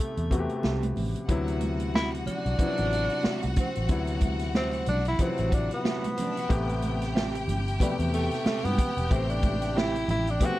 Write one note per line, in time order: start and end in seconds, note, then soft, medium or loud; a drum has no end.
0.00 0.30 C3 medium
0.00 0.31 A3 medium
0.00 0.97 A3 medium
0.00 0.32 B3 medium
0.00 0.39 G4 medium
0.17 0.46 E2 medium
0.17 closed hi-hat soft
0.30 0.99 C3 medium
0.30 0.99 A3 medium
0.30 0.99 B3 medium
0.30 0.39 F#4 medium
0.30 kick medium
0.30 closed hi-hat medium
0.39 1.03 G4 medium
0.49 closed hi-hat soft
0.63 0.93 C2 medium
0.63 0.83 C4 medium
0.63 0.83 G4 medium
0.63 0.84 B4 medium
0.63 0.84 E5 medium
0.63 snare medium
0.63 muted conga soft
0.63 high conga medium
0.83 closed hi-hat medium
0.83 muted conga soft
0.83 high conga medium
0.96 1.13 A1 medium
0.96 open hi-hat medium
0.96 low conga medium
1.16 closed hi-hat soft
1.28 2.23 D2 medium
1.28 2.20 C3 medium
1.28 2.20 F#3 medium
1.28 2.21 B3 medium
1.28 2.21 E4 medium
1.28 6.08 F#4 medium
1.28 6.08 F#5 medium
1.28 kick loud
1.28 closed hi-hat medium
1.47 closed hi-hat soft
1.47 muted conga soft
1.61 closed hi-hat medium
1.61 high conga medium
1.80 closed hi-hat medium
1.94 2.14 C4 medium
1.94 2.10 E4 loud
1.94 2.14 F#4 medium
1.94 2.14 B4 medium
1.94 2.14 E5 medium
1.94 snare loud
1.94 high conga medium
2.12 closed hi-hat soft
2.12 muted conga soft
2.26 3.53 D4 loud
2.26 muted fingered electric bass stroke soft
2.26 closed hi-hat medium
2.26 high conga soft
2.26 low conga medium
2.46 2.58 B1 medium
2.46 closed hi-hat soft
2.58 3.50 C3 medium
2.58 2.67 F3 soft
2.58 3.51 B3 medium
2.58 3.51 E4 medium
2.58 kick medium
2.58 closed hi-hat medium
2.58 low conga medium
2.66 3.54 F#3 medium
2.77 3.07 A1 medium
2.77 closed hi-hat soft
2.93 closed hi-hat medium
3.10 closed hi-hat soft
3.23 3.43 C4 medium
3.23 3.44 F#4 medium
3.23 3.44 B4 medium
3.23 3.44 E5 medium
3.23 muted fingered electric bass stroke soft
3.23 snare loud
3.23 muted conga soft
3.23 high conga medium
3.42 3.56 C2 medium
3.42 closed hi-hat medium
3.42 high conga medium
3.56 3.89 C4 medium
3.56 kick loud
3.56 closed hi-hat medium
3.56 low conga medium
3.75 3.89 A1 medium
3.75 closed hi-hat soft
3.88 4.83 D2 loud
3.88 4.81 C3 medium
3.88 4.81 F#3 medium
3.88 4.81 B3 medium
3.88 4.82 E4 medium
3.88 kick loud
3.88 closed hi-hat medium
3.88 muted conga soft
4.07 closed hi-hat soft
4.21 kick medium
4.21 closed hi-hat medium
4.21 high conga medium
4.39 snare soft
4.39 closed hi-hat medium
4.55 4.74 C4 medium
4.55 4.86 C4 loud
4.55 4.74 F#4 medium
4.55 4.74 B4 medium
4.55 4.75 E5 medium
4.55 snare loud
4.55 muted conga soft
4.55 high conga medium
4.73 closed hi-hat soft
4.86 5.16 B1 medium
4.86 5.06 D4 loud
4.86 closed hi-hat medium
4.86 high conga soft
4.86 low conga medium
5.05 5.23 E4 medium
5.05 closed hi-hat soft
5.19 6.11 C3 medium
5.19 5.28 F3 soft
5.19 5.56 C4 medium
5.19 6.12 E4 medium
5.19 6.12 B4 medium
5.19 muted fingered electric bass stroke soft
5.19 kick medium
5.19 closed hi-hat medium
5.19 muted conga soft
5.19 low conga medium
5.26 6.14 F#3 medium
5.38 5.68 A1 medium
5.38 closed hi-hat soft
5.38 muted conga soft
5.52 5.72 D4 medium
5.52 kick medium
5.52 closed hi-hat medium
5.71 7.31 B3 medium
5.71 closed hi-hat soft
5.84 6.04 C4 medium
5.84 6.05 F#4 medium
5.84 6.05 B4 medium
5.84 6.05 E5 medium
5.84 snare loud
5.84 high conga medium
6.04 closed hi-hat medium
6.04 high conga medium
6.17 6.27 C4 medium
6.17 6.27 C5 medium
6.17 closed hi-hat medium
6.17 low conga medium
6.25 6.36 D4 medium
6.25 6.36 D5 medium
6.32 6.42 E4 medium
6.32 6.41 E5 medium
6.37 6.49 F#4 medium
6.37 6.48 F#5 medium
6.37 closed hi-hat soft
6.48 7.49 A1 loud
6.48 7.41 C3 medium
6.48 7.41 A3 medium
6.48 7.42 B3 medium
6.48 10.59 G4 medium
6.48 7.42 G4 medium
6.48 10.59 G5 loud
6.48 kick loud
6.48 closed hi-hat medium
6.69 closed hi-hat soft
6.69 muted conga soft
6.82 closed hi-hat medium
6.82 high conga medium
7.02 snare soft
7.02 closed hi-hat medium
7.15 7.35 C4 medium
7.15 7.35 G4 medium
7.15 7.35 B4 medium
7.15 7.35 E5 medium
7.15 snare medium
7.15 high conga medium
7.35 closed hi-hat medium
7.35 muted conga soft
7.48 7.77 G1 medium
7.48 closed hi-hat medium
7.48 high conga soft
7.48 low conga medium
7.68 closed hi-hat soft
7.80 7.88 B2 medium
7.80 7.97 G3 medium
7.80 8.72 A3 medium
7.80 8.72 B3 medium
7.80 8.72 G4 medium
7.80 muted fingered electric bass stroke soft
7.80 kick medium
7.80 closed hi-hat medium
7.80 muted conga soft
7.80 low conga medium
7.86 8.74 C3 medium
7.99 8.28 E2 medium
7.99 closed hi-hat soft
7.99 muted conga soft
8.14 8.44 A3 medium
8.14 closed hi-hat medium
8.31 snare soft
8.31 closed hi-hat soft
8.46 8.66 A3 medium
8.46 8.65 C4 medium
8.46 8.65 G4 medium
8.46 8.66 B4 medium
8.46 8.66 E5 medium
8.46 muted fingered electric bass stroke soft
8.46 snare loud
8.46 muted conga soft
8.46 high conga medium
8.65 8.77 G2 medium
8.65 9.14 B3 medium
8.65 closed hi-hat medium
8.65 high conga medium
8.78 kick medium
8.78 closed hi-hat medium
8.78 low conga medium
8.97 9.09 E1 medium
8.97 closed hi-hat soft
9.10 10.05 A1 loud
9.10 10.02 C3 medium
9.10 10.02 A3 medium
9.10 10.02 B3 medium
9.10 9.32 C4 medium
9.10 10.03 G4 medium
9.10 kick loud
9.10 closed hi-hat medium
9.30 9.79 D4 medium
9.30 closed hi-hat soft
9.42 kick medium
9.42 closed hi-hat medium
9.42 high conga medium
9.62 snare soft
9.62 closed hi-hat medium
9.76 9.95 C4 medium
9.76 10.09 E4 medium
9.76 9.95 G4 medium
9.76 9.96 B4 medium
9.76 9.96 E5 medium
9.76 snare loud
9.76 high conga medium
9.95 closed hi-hat soft
9.95 muted conga soft
10.08 10.37 A1 medium
10.08 10.32 E4 medium
10.08 closed hi-hat medium
10.08 high conga soft
10.08 low conga medium
10.27 10.46 D4 medium
10.27 closed hi-hat soft
10.40 10.48 B2 medium
10.40 10.59 A3 medium
10.40 10.59 B3 medium
10.40 10.59 G4 medium
10.40 kick medium
10.40 closed hi-hat medium
10.40 low conga medium
10.45 10.59 C4 medium
10.45 10.59 F#4 loud